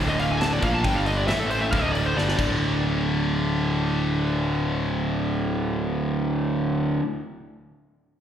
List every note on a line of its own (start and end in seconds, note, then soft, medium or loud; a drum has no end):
0.00 0.58 D1 loud
0.00 0.60 D2 medium
0.00 0.60 A2 medium
0.00 0.61 D3 medium
0.09 0.18 D#5 medium
0.20 0.30 F5 loud
0.20 open hi-hat medium
0.32 0.41 G#5 medium
0.41 0.51 A5 medium
0.41 snare loud
0.41 open hi-hat medium
0.53 0.63 D5 medium
0.60 0.83 A#1 medium
0.60 0.82 A#2 medium
0.60 0.83 F3 medium
0.60 0.83 A#3 medium
0.60 kick loud
0.60 open hi-hat medium
0.64 0.74 F5 loud
0.74 0.84 A5 loud
0.83 1.26 G1 medium
0.83 1.27 G2 medium
0.83 1.27 D3 loud
0.83 1.28 G3 loud
0.83 0.95 G5 medium
0.83 kick medium
0.83 open hi-hat medium
0.95 1.06 F5 medium
1.06 1.17 D#5 loud
1.06 open hi-hat soft
1.18 1.27 D5 medium
1.27 1.69 A1 medium
1.27 1.71 A2 medium
1.27 1.71 E3 medium
1.27 1.72 A3 loud
1.27 1.38 E5 medium
1.27 snare loud
1.27 open hi-hat medium
1.40 1.50 A4 medium
1.50 1.61 C5 medium
1.50 open hi-hat medium
1.61 1.71 E5 loud
1.71 2.14 D1 medium
1.71 2.15 D2 medium
1.71 2.16 A2 medium
1.71 2.15 D3 medium
1.71 1.82 F5 loud
1.71 kick loud
1.71 open hi-hat medium
1.82 1.92 D#5 medium
1.92 2.04 D5 medium
1.92 open hi-hat medium
2.06 2.16 C5 medium
2.15 2.37 G1 medium
2.15 2.36 G2 loud
2.15 2.38 D3 loud
2.15 2.39 G3 loud
2.15 2.48 D5 medium
2.15 snare medium
2.28 snare medium
2.36 6.99 D1 medium
2.36 7.01 D2 medium
2.36 7.03 A2 medium
2.36 7.05 D3 medium
2.36 kick medium
2.36 crash medium